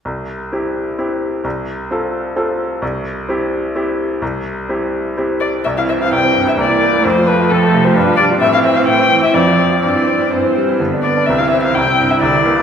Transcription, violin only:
X:1
M:3/4
L:1/16
Q:1/4=129
K:C
V:1 name="Violin"
z12 | z12 | z12 | z8 z2 d2 |
e f e f g3 e d4 | c2 B2 A3 c B2 d2 | e f e f g3 e d4 | d4 c4 z2 d2 |
e f e f g3 e d4 |]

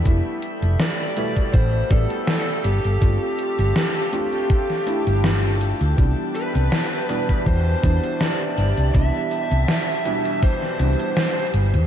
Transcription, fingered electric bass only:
X:1
M:4/4
L:1/16
Q:"Swing 16ths" 1/4=81
K:C
V:1 name="Fingered electric bass" clef=bass
F,,, z2 F,,, z4 A,,, z A,,, z3 G,,, G,,, | G,,, z2 G,,, z6 z G,,,4 D,, | C,, z2 C,, z4 E,, z E,, z3 G,,, C,, | C,, z2 C,, z6 C,, z3 G,,, E,, |]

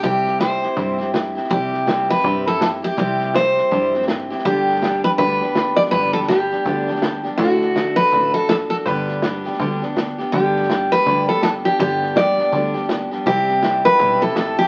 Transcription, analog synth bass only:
X:1
M:4/4
L:1/8
Q:"Swing" 1/4=163
K:G
V:1 name="Analog synth bass" clef=bass
C,,4 G,,4 | C,,4 G,,4 | C,,4 G,,4 | G,,,4 D,,4 |
G,,,4 D,,4 | D,,4 A,,,4 | G,,,4 D,,4 | G,,,4 D,,4 |
G,,,4 D,,4 | C,,4 B,,,2 A,,,2 |]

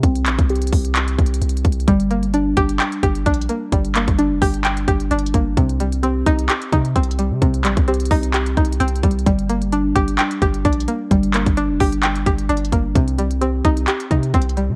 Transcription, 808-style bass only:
X:1
M:4/4
L:1/16
Q:1/4=130
K:Gm
V:1 name="808-style bass" clef=bass
C,,2 B,,, C,,3 C,,4 C,,2 C,,2 C,,2 | G,,,6 G,,,2 z2 G,,,2 B,,,2 z2 | G,,,3 G,,,2 F,,, G,,,4 G,,,2 G,,,2 G,,,2 | C,,6 C,,2 z2 C,2 C,,3 C, |
C,,2 B,,, C,,3 C,,4 C,,2 C,,2 C,,2 | G,,,6 G,,,2 z2 G,,,2 B,,,2 z2 | G,,,3 G,,,2 F,,, G,,,4 G,,,2 G,,,2 G,,,2 | C,,6 C,,2 z2 C,2 C,,3 C, |]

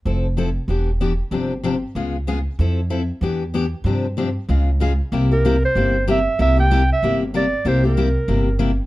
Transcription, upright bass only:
X:1
M:4/4
L:1/8
Q:"Swing" 1/4=190
K:Cmix
V:1 name="Upright bass" clef=bass
F,,,4 E,,,4 | G,,,4 _D,,4 | F,,4 E,,4 | G,,4 _D,,4 |
C,,4 G,,,4 | C,,4 G,,,4 | C,,4 G,,,4 |]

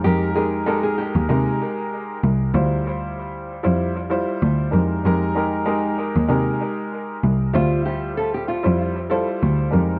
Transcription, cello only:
X:1
M:4/4
L:1/16
Q:"Swing 16ths" 1/4=96
K:Dm
V:1 name="Cello" clef=bass
F,,6- F,, _E,, C,2 z4 C,,2 | D,,6- D,, F,,4 z D,,2 F,,2 | F,,6- F,, _E,, C,2 z4 C,,2 | D,,6- D,, F,,4 z D,,2 F,,2 |]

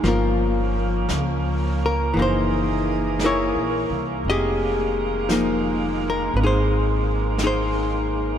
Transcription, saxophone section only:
X:1
M:4/4
L:1/8
Q:"Swing" 1/4=57
K:Fm
V:1 name="Saxophone section"
[F,B,D]4 [_F,Ae]4 | [E,A,]8 |]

